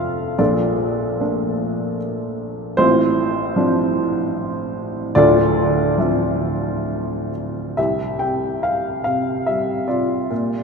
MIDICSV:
0, 0, Header, 1, 2, 480
1, 0, Start_track
1, 0, Tempo, 821918
1, 228, Time_signature, 3, 2, 24, 8
1, 705, Tempo, 787402
1, 2145, Tempo, 807537
1, 3585, Tempo, 892857
1, 4545, Tempo, 841515
1, 6174, End_track
2, 0, Start_track
2, 0, Title_t, "Upright piano"
2, 0, Program_c, 0, 0
2, 0, Control_c, 0, 64, 127
2, 0, Note_on_c, 0, 29, 50
2, 0, Note_on_c, 0, 41, 51
2, 0, Note_on_c, 0, 53, 41
2, 0, Note_on_c, 0, 57, 39
2, 0, Note_on_c, 0, 60, 43
2, 0, Note_on_c, 0, 62, 45
2, 0, Note_on_c, 0, 64, 54
2, 0, Note_on_c, 0, 65, 58
2, 0, Note_on_c, 0, 69, 59
2, 0, Note_on_c, 0, 74, 61
2, 0, Note_on_c, 0, 76, 80
2, 0, Note_on_c, 0, 77, 81
2, 201, Note_off_c, 0, 41, 0
2, 202, Note_off_c, 0, 29, 0
2, 202, Note_off_c, 0, 53, 0
2, 202, Note_off_c, 0, 57, 0
2, 205, Note_off_c, 0, 60, 0
2, 208, Note_off_c, 0, 65, 0
2, 208, Note_off_c, 0, 69, 0
2, 225, Note_off_c, 0, 74, 0
2, 225, Note_on_c, 0, 46, 59
2, 225, Note_on_c, 0, 74, 77
2, 227, Note_on_c, 0, 34, 61
2, 228, Note_off_c, 0, 62, 0
2, 228, Note_on_c, 0, 62, 54
2, 228, Note_on_c, 0, 65, 54
2, 230, Note_on_c, 0, 69, 55
2, 237, Control_c, 0, 64, 0
2, 238, Note_off_c, 0, 64, 0
2, 239, Note_off_c, 0, 76, 0
2, 242, Note_off_c, 0, 77, 0
2, 320, Control_c, 0, 64, 127
2, 697, Note_off_c, 0, 62, 0
2, 702, Note_on_c, 0, 57, 44
2, 705, Note_on_c, 0, 58, 41
2, 706, Note_on_c, 0, 62, 51
2, 1164, Note_off_c, 0, 74, 0
2, 1166, Note_off_c, 0, 65, 0
2, 1167, Note_off_c, 0, 69, 0
2, 1639, Note_off_c, 0, 46, 0
2, 1639, Note_off_c, 0, 57, 0
2, 1640, Note_off_c, 0, 34, 0
2, 1640, Note_off_c, 0, 58, 0
2, 1641, Note_off_c, 0, 62, 0
2, 1658, Note_on_c, 0, 72, 96
2, 1664, Note_on_c, 0, 45, 69
2, 1665, Note_on_c, 0, 33, 67
2, 1667, Note_on_c, 0, 60, 61
2, 1669, Note_on_c, 0, 65, 64
2, 1674, Control_c, 0, 64, 0
2, 1786, Control_c, 0, 64, 127
2, 2131, Note_off_c, 0, 60, 0
2, 2140, Note_on_c, 0, 53, 55
2, 2140, Note_on_c, 0, 60, 48
2, 2146, Note_on_c, 0, 62, 58
2, 3069, Note_off_c, 0, 53, 0
2, 3069, Note_off_c, 0, 72, 0
2, 3070, Note_off_c, 0, 60, 0
2, 3072, Note_off_c, 0, 33, 0
2, 3072, Note_off_c, 0, 45, 0
2, 3072, Note_off_c, 0, 62, 0
2, 3074, Note_off_c, 0, 65, 0
2, 3085, Note_on_c, 0, 74, 103
2, 3089, Note_on_c, 0, 38, 65
2, 3090, Note_on_c, 0, 26, 66
2, 3097, Note_on_c, 0, 65, 79
2, 3098, Note_on_c, 0, 62, 72
2, 3099, Note_on_c, 0, 69, 74
2, 3105, Control_c, 0, 64, 0
2, 3214, Control_c, 0, 64, 127
2, 3574, Note_off_c, 0, 62, 0
2, 3578, Note_on_c, 0, 53, 43
2, 3581, Note_on_c, 0, 60, 39
2, 3583, Note_on_c, 0, 62, 41
2, 3585, Note_on_c, 0, 76, 51
2, 4279, Note_off_c, 0, 74, 0
2, 4285, Note_off_c, 0, 65, 0
2, 4286, Note_off_c, 0, 69, 0
2, 4521, Note_off_c, 0, 38, 0
2, 4521, Note_off_c, 0, 53, 0
2, 4522, Note_off_c, 0, 26, 0
2, 4522, Note_off_c, 0, 60, 0
2, 4523, Note_off_c, 0, 62, 0
2, 4524, Note_off_c, 0, 76, 0
2, 4542, Note_on_c, 0, 76, 70
2, 4545, Note_on_c, 0, 36, 50
2, 4549, Note_on_c, 0, 67, 49
2, 4553, Control_c, 0, 64, 0
2, 4652, Control_c, 0, 64, 127
2, 4782, Note_on_c, 0, 79, 68
2, 4793, Note_on_c, 0, 48, 35
2, 4800, Note_off_c, 0, 76, 0
2, 5031, Note_on_c, 0, 77, 73
2, 5038, Note_off_c, 0, 79, 0
2, 5255, Note_off_c, 0, 67, 0
2, 5256, Note_off_c, 0, 77, 0
2, 5266, Note_on_c, 0, 77, 73
2, 5269, Note_off_c, 0, 48, 0
2, 5278, Note_on_c, 0, 48, 47
2, 5507, Note_on_c, 0, 76, 67
2, 5516, Note_off_c, 0, 77, 0
2, 5516, Note_on_c, 0, 55, 43
2, 5731, Note_off_c, 0, 76, 0
2, 5738, Note_off_c, 0, 48, 0
2, 5742, Note_on_c, 0, 74, 59
2, 5747, Note_on_c, 0, 48, 42
2, 5751, Note_on_c, 0, 65, 43
2, 5965, Note_off_c, 0, 36, 0
2, 5976, Note_off_c, 0, 55, 0
2, 5979, Note_off_c, 0, 48, 0
2, 5987, Note_on_c, 0, 46, 62
2, 5996, Control_c, 0, 64, 0
2, 6102, Control_c, 0, 64, 127
2, 6174, Note_off_c, 0, 46, 0
2, 6174, Note_off_c, 0, 65, 0
2, 6174, Note_off_c, 0, 74, 0
2, 6174, End_track
0, 0, End_of_file